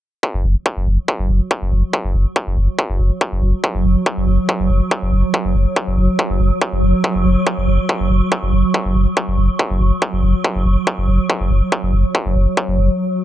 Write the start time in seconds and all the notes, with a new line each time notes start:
0.23 F#3, kick
0.34 F#1
0.44 F#1
0.66 kick
0.77 F#1
0.87 F#1
1.08 kick
1.19 F#1
1.30 F#1
1.51 kick
1.62 F#1
1.72 F#1
1.93 kick
2.04 F#1
2.15 F#1
2.36 kick
2.47 F#1
2.57 F#1
2.79 kick
2.90 F#1
3.00 F#1
3.21 kick
3.32 F#1
3.42 F#1
3.64 kick
3.75 F#1
3.85 F#1
4.06 kick
4.17 F#1
4.28 F#1
4.49 kick
4.60 F#1
4.70 F#1
4.91 kick
5.02 F#1
5.13 F#1
5.34 kick
5.45 F#1
5.55 F#1
5.76 kick
5.87 F#1
5.98 F#1
6.19 kick
6.30 F#1
6.40 F#1
6.62 kick
6.73 F#1
6.83 F#1
7.04 kick
7.15 F#1
7.25 F#1
7.47 kick
7.58 F#1
7.68 F#1
7.89 kick
8.00 F#1
8.10 F#1
8.32 kick
8.43 F#1
8.53 F#1
8.74 kick
8.85 F#1
8.96 F#1
9.17 kick
9.28 F#1
9.38 F#1
9.59 kick
9.70 F#1
9.81 F#1
10.02 kick
10.13 F#1
10.23 F#1
10.44 kick
10.55 F#1
10.66 F#1
10.87 kick
10.98 F#1
11.08 F#1
11.30 kick
11.40 F#1
11.51 F#1
11.72 kick
11.83 F#1
11.93 F#1
12.15 kick
12.26 F#1
12.36 F#1
12.57 kick
12.68 F#1
12.78 F#1